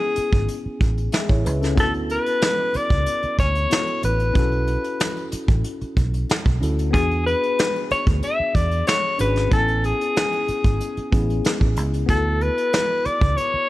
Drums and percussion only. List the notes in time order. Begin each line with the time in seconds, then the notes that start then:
0.16 closed hi-hat
0.33 kick, closed hi-hat
0.48 closed hi-hat
0.81 kick, closed hi-hat
0.98 closed hi-hat
1.12 snare, closed hi-hat
1.29 kick, closed hi-hat
1.46 closed hi-hat
1.62 snare, closed hi-hat
1.77 kick, closed hi-hat
1.94 closed hi-hat
2.10 closed hi-hat
2.26 closed hi-hat
2.42 snare, closed hi-hat
2.74 closed hi-hat
2.90 kick, closed hi-hat
3.06 closed hi-hat
3.23 closed hi-hat
3.39 kick, closed hi-hat
3.55 closed hi-hat
3.71 snare, closed hi-hat
3.87 closed hi-hat
4.03 closed hi-hat
4.19 closed hi-hat
4.35 kick, closed hi-hat
4.52 closed hi-hat
4.67 closed hi-hat
4.84 closed hi-hat
5.00 snare, closed hi-hat
5.17 closed hi-hat
5.32 closed hi-hat
5.48 kick, closed hi-hat
5.64 closed hi-hat
5.81 closed hi-hat
5.97 kick, closed hi-hat
6.14 closed hi-hat
6.29 snare, closed hi-hat
6.45 kick, closed hi-hat
6.63 closed hi-hat
6.79 closed hi-hat
6.94 kick, closed hi-hat
7.11 closed hi-hat
7.27 closed hi-hat
7.44 closed hi-hat
7.59 snare, closed hi-hat
7.75 closed hi-hat
7.91 closed hi-hat
8.07 kick, closed hi-hat
8.23 closed hi-hat
8.55 kick, closed hi-hat
8.71 closed hi-hat
8.87 snare, closed hi-hat
9.19 closed hi-hat
9.36 snare, closed hi-hat
9.51 kick, closed hi-hat
9.68 closed hi-hat
9.84 closed hi-hat
10.01 closed hi-hat
10.16 snare, closed hi-hat
10.33 closed hi-hat
10.48 closed hi-hat
10.64 kick, closed hi-hat
10.80 closed hi-hat
10.97 closed hi-hat
11.13 kick, closed hi-hat
11.30 closed hi-hat
11.45 snare, closed hi-hat
11.61 kick
11.77 closed hi-hat
11.94 closed hi-hat
12.09 kick, closed hi-hat
12.41 closed hi-hat
12.58 closed hi-hat
12.73 snare, closed hi-hat
13.05 closed hi-hat
13.21 kick, closed hi-hat
13.38 closed hi-hat